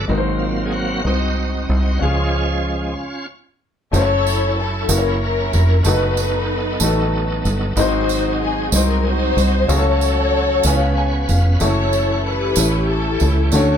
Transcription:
Already playing: grand piano E3 A3 B3 D4 E4 B4
0.08 fingered electric bass G#1, grand piano G#2 G#3 C4 D#4 F#4 A#4, tonewheel organ F#3 A#3 C4
0.17 grand piano C5
0.39 tonewheel organ F4
0.65 tonewheel organ G#4
0.72 tonewheel organ F#4
1.04 fingered electric bass C2, grand piano G#3 C4 D#4 F#4 C5, tonewheel organ C4 D#4 F#4
1.69 fingered electric bass C2
1.99 fingered electric bass C#2, grand piano C#3 C#4 F4 G#4, tonewheel organ F3 G#3 C#4 F4
3.92 fingered electric bass F#1, tonewheel organ F#3 C#4 E4 G#4, grand piano A3 C#4 E4 F#4 C5, string section E4 A4 C#5, tambourine
3.99 tonewheel organ A4, grand piano C#5
4.27 tambourine
4.59 string section A4
4.89 fingered electric bass F#1, tonewheel organ F#3 C#4 E4 A#4, grand piano A#3 C#4 E4 F#4 B4, string section C#4 E4 A#4, tambourine
4.98 grand piano C#5
5.23 string section C#4 E4 A#4
5.53 fingered electric bass F1, tambourine
5.84 fingered electric bass F#1, tonewheel organ F#3 B3 D#4 A4, grand piano A3 B3 D#4 F#4 A4, string section D#4 B4, tambourine
5.94 grand piano B4
6.17 tambourine
6.80 fingered electric bass A1, grand piano A3 B3 D#4 F#4 A4, tambourine
7.45 fingered electric bass G1, tambourine
7.76 fingered electric bass G#1, grand piano G#2 G#3 C4 D#4 F#4, tonewheel organ F#3 C4 D#4 G4, string section D#4 F#4 C5, tambourine
7.80 tonewheel organ G#4, grand piano C5
8.09 tambourine
8.42 string section G#4
8.72 fingered electric bass C2, grand piano G#3 C4 D#4 F#4 C5, string section A#4, tambourine
9.06 string section D#4 F#4 C5
9.37 fingered electric bass C2, tambourine
9.68 fingered electric bass C#2, grand piano C#3 C#4 F#4 G#4, tonewheel organ F#3 A3 C#4 G#4, string section C#5, tambourine
9.72 string section F#4 A4
9.77 tonewheel organ A4, grand piano A4
10.01 tambourine
10.63 fingered electric bass C#2, tonewheel organ C#3 B3 C#4 B4, grand piano C#3 B3 C#4 E4 G#5, tambourine
10.68 grand piano C#5
10.73 grand piano F5
10.97 tonewheel organ C#5, grand piano G#5
11.28 fingered electric bass F1, tonewheel organ F5, grand piano F5, tambourine
11.60 fingered electric bass F#1, tonewheel organ E3 A3 C#4 F#5, grand piano A3 C#4 E4 F#4 C#5, string section C#5, tambourine
11.64 string section E4 A4
11.93 tambourine
12.27 string section E4 G4 B4
12.56 fingered electric bass A1, grand piano A2 A3 C#4 E4 G4 C#5, tonewheel organ E3 A3 C#4 G4, tambourine
12.91 string section C#4 E4 A4
13.20 fingered electric bass C#2, tambourine
13.52 fingered electric bass D2, tonewheel organ D3 A3 E4 C#5, grand piano D3 A3 C#4 D4 F#4 C#5, string section F#4 A4 C#5, tambourine
13.59 tonewheel organ F#4

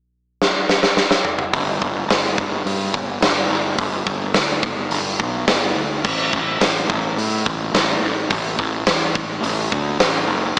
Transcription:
0.42 snare
0.69 snare
0.83 snare
0.97 snare
1.11 snare
1.25 mid tom
1.39 mid tom
1.53 fingered electric bass G1, kick, open hi-hat
1.81 fingered electric bass G1, kick
2.08 fingered electric bass G1, snare, open hi-hat
2.38 fingered electric bass G1, kick
2.65 fingered electric bass G2, open hi-hat
2.93 fingered electric bass G1, kick
3.22 fingered electric bass G1, snare, open hi-hat
3.50 fingered electric bass G1
3.78 fingered electric bass G1, kick, open hi-hat
4.07 fingered electric bass G1, kick
4.34 fingered electric bass D2, snare, open hi-hat
4.63 fingered electric bass G1, kick
4.91 fingered electric bass G1, open hi-hat
5.19 fingered electric bass B1, kick
5.48 fingered electric bass G1, snare, open hi-hat
5.76 fingered electric bass D2
6.04 fingered electric bass A1, kick, crash
6.33 fingered electric bass A1, kick
6.60 fingered electric bass A1, snare, open hi-hat
6.89 fingered electric bass A1, kick
7.17 fingered electric bass A2, open hi-hat
7.46 fingered electric bass A1, kick
7.74 fingered electric bass A1, snare, open hi-hat
8.02 fingered electric bass A1
8.30 fingered electric bass A1, kick, open hi-hat
8.59 fingered electric bass A1, kick
8.86 fingered electric bass E2, snare, open hi-hat
9.15 fingered electric bass A1, kick
9.43 fingered electric bass A1, open hi-hat
9.72 fingered electric bass D2, kick
9.99 fingered electric bass A1, snare, open hi-hat
10.28 fingered electric bass F#1

